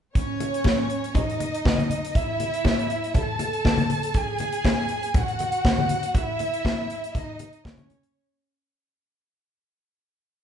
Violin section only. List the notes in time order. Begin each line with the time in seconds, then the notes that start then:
0.15 C#4 C#5
1.15 D#4 D#5
2.15 E4 E5
3.16 A4 A5
4.17 G#4 G#5
5.16 F#4 F#5
6.16 E4 E5
7.15 D#4 D#5
7.65 C#4 C#5